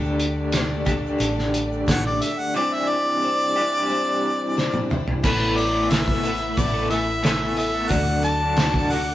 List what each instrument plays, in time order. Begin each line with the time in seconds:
Already playing: fingered electric bass D2, twelve-string acoustic guitar D3 G3 D4 A4, clean electric guitar D3 A3 D4 G4, string section A3 D4 G4 D5
0.04 shaker
0.20 closed hi-hat, shaker
0.52 twelve-string acoustic guitar D3 G3 D4 A4, snare, closed hi-hat, shaker
0.85 twelve-string acoustic guitar G3 D4 A4, clean electric guitar A3 D4 G4, kick, closed hi-hat, shaker
0.90 clean electric guitar D3
1.07 shaker
1.18 fingered electric bass A1, twelve-string acoustic guitar D3 G3 D4 A4, closed hi-hat, shaker
1.39 snare
1.54 closed hi-hat, shaker
1.72 shaker
1.86 fingered electric bass A1, twelve-string acoustic guitar D3 G3 D4 A4, harmonica F#5, kick, snare, closed hi-hat, shaker
2.06 harmonica D5
2.21 twelve-string acoustic guitar G3 D4 A4, harmonica E5, closed hi-hat, shaker
2.38 harmonica F#5, shaker
2.54 twelve-string acoustic guitar C3 G3 C4 D4 E4, clean electric guitar C3 E3 G3 D4, string section C4 E4 D5, harmonica D5
2.58 clean electric guitar G4
2.74 harmonica E5
2.89 harmonica D5
3.22 twelve-string acoustic guitar G3 C4 D4 E4
3.56 clean electric guitar E3 G3 D4 G4, twelve-string acoustic guitar C4 D4 E4
3.60 clean electric guitar C3
3.89 twelve-string acoustic guitar G3 C4 D4 E4
4.57 twelve-string acoustic guitar G3 C4 D4 E4, snare
4.74 high tom
4.90 twelve-string acoustic guitar C4 D4 E4, mid tom
5.08 floor tom
5.23 fingered electric bass A1, clean electric guitar A2 E3 A3 B3 A4, twelve-string acoustic guitar A2 E3 A3 B3 E4, reed electric piano E4 A4 B4, string section A4 B4 E5 B5, harmonica B4, kick, crash, shaker
5.57 harmonica D5, open hi-hat, shaker
5.74 clean electric guitar A3 B3 A4
5.90 clean electric guitar A2 E3 A3 B3 A4, twelve-string acoustic guitar E3 A3 B3 E4, reed electric piano E4 A4 B4, harmonica E5, snare, open hi-hat, shaker
6.08 kick
6.24 clean electric guitar E3 A3 B3, twelve-string acoustic guitar A3 B3 E4, open hi-hat, shaker
6.28 clean electric guitar A4
6.42 muted clean electric guitar stroke
6.57 fingered electric bass A1, twelve-string acoustic guitar A2 E3 A3 B3 E4, harmonica D5, kick, open hi-hat, shaker
6.74 clean electric guitar A3 B3 A4
6.90 clean electric guitar E3 A3 B3 A4, harmonica E5, open hi-hat, shaker
7.08 muted clean electric guitar stroke
7.23 clean electric guitar A2 E3 A3 B3, twelve-string acoustic guitar E3 A3 B3, snare, open hi-hat, shaker
7.27 twelve-string acoustic guitar E4, clean electric guitar A4
7.40 clean electric guitar A3 B3 A4
7.57 harmonica E5, open hi-hat, shaker
7.74 clean electric guitar A3 B3 A4
7.89 fingered electric bass D2, clean electric guitar D3 F#3 A3 D4, twelve-string acoustic guitar D3 A3 D4 F#4, reed electric piano F#4 A4 D5, string section D5 F#5 D6, harmonica F#5, kick, open hi-hat, shaker
7.93 clean electric guitar F#4
8.23 harmonica A5, open hi-hat, shaker
8.40 clean electric guitar A3 D4 F#4
8.57 clean electric guitar D3 F#3 A3 D4 F#4, twelve-string acoustic guitar D3 A3 D4 F#4, reed electric piano F#4 A4 D5, snare, open hi-hat, shaker
8.74 kick
8.90 clean electric guitar F#3 A3 D4 F#4, twelve-string acoustic guitar A3 D4 F#4, harmonica F#5, open hi-hat, shaker
9.07 muted clean electric guitar stroke